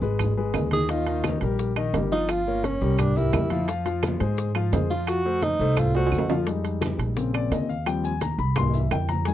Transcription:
0.02 upright bass G#1, grand piano G#3 G#4 B4, high conga, maracas
0.19 high conga, low conga, high timbale, claves, maracas
0.37 grand piano G#3 G#4 B4, high conga
0.54 upright bass D#2, high conga, high timbale, low timbale, claves, maracas
0.71 grand piano D#3 D#4 D#5, tenor saxophone G#4, high conga, high timbale, maracas
0.89 grand piano D#3 D#4 D#5, tenor saxophone F4, high bongo, high conga, high timbale, maracas
1.07 grand piano D#3 D#4 D#5, high bongo, high conga, high timbale
1.24 high bongo, high conga, high timbale, low timbale, claves, maracas
1.41 upright bass A#1, grand piano G3 G4 A#4, high bongo, high conga, high timbale, maracas
1.59 high bongo, high conga, maracas
1.76 grand piano D#3 D#4 D#5, high bongo, high conga, high timbale, claves
1.93 upright bass G1, grand piano G3 G4 A#4, high bongo, low bongo, high conga, high timbale, low timbale, maracas
2.12 grand piano F3 F4 F5, tenor saxophone D#4, high conga, maracas
2.29 tenor saxophone F4, high bongo, high conga, high timbale, claves, maracas
2.46 grand piano A#3 A#4 C#5, high bongo, high conga
2.63 tenor saxophone C#4, high bongo, high conga, high timbale, low timbale, maracas
2.81 upright bass C2, grand piano G3 G4 A#4, high bongo, high conga, maracas
2.98 tenor saxophone D4, high bongo, high conga, low conga, high timbale, claves, maracas
3.16 grand piano G3 G4 A#4, tenor saxophone E4, high bongo, high conga, low conga, maracas
3.33 upright bass F2, high bongo, low bongo, high conga, high timbale, low timbale, claves, maracas
3.50 grand piano F3 F4 F5, high conga, high timbale, maracas
3.68 grand piano F3 F4 F5, high bongo, high timbale, maracas
3.85 grand piano F3 F4 F5, high bongo, high conga, high timbale, maracas
4.03 high bongo, high conga, high timbale, low timbale, claves, maracas
4.20 upright bass G#2, grand piano G#3 G#4 C5, high bongo, high conga, high timbale, maracas
4.38 high bongo, high conga, maracas
4.55 grand piano F3 F4 F5, high bongo, high conga, high timbale, claves
4.72 upright bass F2, grand piano G#3 G#4 C5, high bongo, low bongo, high conga, high timbale, low timbale, maracas
4.90 grand piano F3 F4 F5, tenor saxophone F4, high conga, maracas
5.07 tenor saxophone F#4, high bongo, high conga, high timbale, claves, maracas
5.25 grand piano A3 A4 C5, high bongo, high conga
5.42 tenor saxophone D#4, high bongo, high conga, high timbale, low timbale, maracas
5.59 upright bass C2, grand piano A3 A4 C5, high bongo, high conga, maracas
5.77 tenor saxophone F4, high bongo, high conga, low conga, high timbale, claves, maracas
5.95 grand piano A3 A4 C5, tenor saxophone F#4, high bongo, high conga, high timbale
6.06 high timbale
6.12 upright bass F2, high bongo, low bongo, high conga, claves, maracas
6.18 low timbale
6.30 grand piano F3 F4 F5, high conga, low timbale, maracas
6.47 grand piano G3 G#3 D#4, high bongo, high conga, high timbale, maracas
6.64 high bongo, high conga, high timbale, maracas
6.81 high bongo, high conga, high timbale, low timbale, claves, maracas
6.99 upright bass A#1, high bongo, high conga, high timbale, maracas
7.16 grand piano C#3 A#3 C4, high bongo, high conga, maracas
7.34 grand piano D5, high bongo, high conga, high timbale, claves
7.51 upright bass D#2, grand piano D#5, high bongo, low bongo, high conga, high timbale, low timbale, maracas
7.69 grand piano F5, high conga, maracas
7.86 grand piano F3 G3 C4 G5, high bongo, high conga, high timbale, claves, maracas
8.04 grand piano G#5, high bongo, high conga, maracas
8.21 grand piano A#5, high bongo, high conga, high timbale, low timbale, maracas
8.38 upright bass C2, grand piano B5, high bongo, high conga, maracas
8.56 grand piano E3 G3 A#3 C6, high bongo, high conga, low conga, high timbale, claves, maracas
8.70 grand piano D#5, high conga, low conga
8.74 grand piano E5, high bongo, maracas
8.91 upright bass F2, grand piano G5, high bongo, low bongo, high conga, high timbale, low timbale, claves, maracas
9.09 grand piano A#5, high conga, high timbale, maracas
9.25 grand piano D#3 G3 G#3 G#5, high bongo, high conga, high timbale, maracas

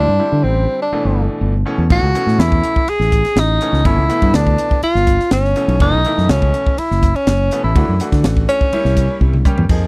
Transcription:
Already playing: grand piano D3 G3 C4 E4, tenor saxophone D4
0.07 fingered electric bass G2
0.19 grand piano D3 G3 C4 E4
0.32 fingered electric bass D3
0.43 fingered electric bass A1, tenor saxophone C4
0.82 tenor saxophone D4
0.92 grand piano B2 E3 A3 D4, muted fingered electric bass stroke
1.05 fingered electric bass G1
1.41 fingered electric bass G1
1.66 grand piano B2 E3 A3 C#4
1.78 fingered electric bass E2
1.90 fingered electric bass A1, grand piano B2 E3 A3 C#4, tenor saxophone F#4, kick, ride
2.02 fingered electric bass C#2
2.15 grand piano B2 E3 A3 C#4, hi-hat pedal, ride
2.27 fingered electric bass A2, snare
2.39 fingered electric bass E2, tenor saxophone E4, snare, ride
2.52 kick
2.63 hi-hat pedal, ride
2.76 kick
2.87 tenor saxophone G#4, muted fingered electric bass stroke, ride
3.00 fingered electric bass A1, snare
3.12 kick, hi-hat pedal, ride
3.25 snare, ride
3.36 fingered electric bass A1, tenor saxophone D#4, snare, ride
3.61 grand piano B2 E3 A3 C#4, hi-hat pedal, ride
3.73 fingered electric bass C#2, snare
3.85 fingered electric bass G1, grand piano B2 E3 A3 C#4, tenor saxophone E4, kick, ride
3.97 fingered electric bass C#2
4.09 grand piano B2 E3 A3 B3, hi-hat pedal, ride
4.22 fingered electric bass G2, kick, ride
4.33 fingered electric bass D2, tenor saxophone D4, snare, ride
4.47 kick
4.58 hi-hat pedal, ride
4.71 kick
4.82 tenor saxophone F4, muted fingered electric bass stroke, ride
4.95 fingered electric bass G1, snare
5.07 kick, hi-hat pedal, ride
5.20 snare
5.31 fingered electric bass G1, tenor saxophone C#4, snare, ride
5.45 snare
5.56 grand piano B2 E3 A3 C#4, hi-hat pedal, ride
5.68 fingered electric bass B1, ride
5.80 fingered electric bass F#1, grand piano B2 E3 A3 C#4, tenor saxophone D#4, kick, ride
5.93 fingered electric bass B1
6.04 grand piano B2 E3 A3 E4, hi-hat pedal, ride
6.18 fingered electric bass F#2, snare
6.29 fingered electric bass C#2, tenor saxophone C#4, snare, ride
6.42 kick
6.54 hi-hat pedal, ride
6.67 kick
6.78 tenor saxophone E4, muted fingered electric bass stroke, ride
6.91 fingered electric bass F#1, snare
7.03 kick, hi-hat pedal, ride
7.15 tenor saxophone C#4, ride
7.27 fingered electric bass F#1, snare, ride
7.51 grand piano B2 E3 A3 B3, hi-hat pedal, ride
7.64 fingered electric bass A1, tenor saxophone E4
7.76 fingered electric bass D2, grand piano E3 A3 D4 F#4, kick, ride
7.88 fingered electric bass F#2
8.00 grand piano E3 A3 D4 F#4, hi-hat pedal, ride
8.12 fingered electric bass D3, kick, snare, ride
8.24 fingered electric bass A1, snare, ride
8.37 kick
8.48 tenor saxophone C#4, hi-hat pedal, ride
8.61 kick
8.72 grand piano G3 A#3 C#4 E4, muted fingered electric bass stroke, ride
8.85 fingered electric bass C2, snare
8.97 kick, hi-hat pedal, ride
9.21 fingered electric bass C2, kick
9.33 mid tom
9.45 grand piano G3 A#3 C#4 G4, kick, hi-hat pedal
9.58 fingered electric bass E2, floor tom
9.69 fingered electric bass F2, grand piano F3 A#3 D#4 G#4, kick, crash

